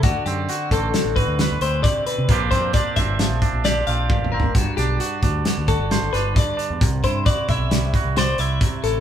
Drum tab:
HH |x--x--x--x--x--x--x--x--x--x--|x--x--x--x--x--x--x--x--------|x--x--x--x--x--x--x--x--x--x--|x--x--x--x--x--x--x--x--x--x--|
SD |------------o-----o-----------|---o-----o--o-----o-----------|---o--------o-----o--o--------|------o-----o-----o-----------|
T1 |------------------------------|------------------------o-----|------------------------------|------------------------------|
T2 |------------------------------|--------------------------o---|------------------------------|------------------------------|
FT |------------------------------|----------------------------o-|------------------------------|------------------------------|
BD |o--------o-----o--------o-----|o--o--o--o-----o--------o-----|o--------o-----o--------o-----|o--o--o--o-----o--------o-----|